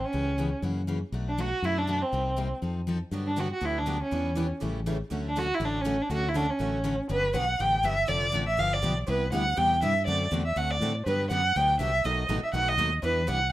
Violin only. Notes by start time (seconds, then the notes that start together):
0.04 C#4
1.29 D4
1.41 F#4
1.65 E4
1.78 D4
2.02 C4
3.27 D4
3.40 F#4
3.53 F#4
3.65 E4
3.78 D4
4.02 C#4
5.28 D4
5.38 F#4
5.54 E4
5.65 D4
5.81 C#4
6.02 D4
6.12 F#4
6.28 E4
6.36 D4
6.50 C#4
7.10 B4
7.36 F#5
7.60 G5
7.85 E5
8.08 D5
8.47 E5
8.59 F5
8.73 D5
9.09 B4
9.33 F#5
9.58 G5
9.83 E5
10.07 D5
10.45 E5
10.57 F#5
10.70 D5
11.06 B4
11.30 F#5
11.56 G5
11.80 E5
12.05 D#5
12.43 E5
12.54 F#5
12.68 D#5
13.05 B4
13.30 F#5